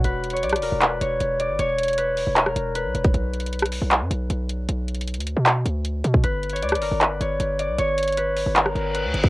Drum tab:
HH |x-----------x---x---x---x---x---x---o-----------x-----------x-----------x-----------x-----------|x-----------x--x--x--x--x-----------o-----------x-----------x-----------x-----------x-----x-----|x-----------x---x---x---x---x---x---o-----------x-----------x-----------x-----------x-----------|x-----------x---x---x---x---x---x---x-----------x-----------x-----------x-----------x-----------|
CP |------------------------------------------------x-----------------------------------------------|------------------------------------------------x-----------------------------------------------|------------------------------------------------x-----------------------------------------------|------------------------------------------------x-----------------------------------------------|
SD |------------------------------r-----------------------------------------------------------------|------------------------------------------------------r-----------------------------------------|------------------------------r-----------------------------------------------------------------|------------------------------------------------------------------------------------------------|
BD |------------------------------------------------------------------------------------------------|------------------------------------------------------------------------------------------o-----|------------------------------------------------------------------------------------------------|------------------------------------------------------------------------------------------o-----|

HH |x-----------x---x---x---x---x---x---o-----------x-----------x-----------x-----------x-----------|x-----------x--x--x--x--x-----------o-----------x-----------x-----------x-----------x-----x-----|
CP |------------------------------------------------x-----------------------------------------------|------------------------------------------------x-----------------------------------------------|
SD |------------------------------r-----------------------------------------------------------------|------------------------------------------------------r-----------------------------------------|
BD |------------------------------------------------------------------------------------------------|------------------------------------------------------------------------------------------o-----|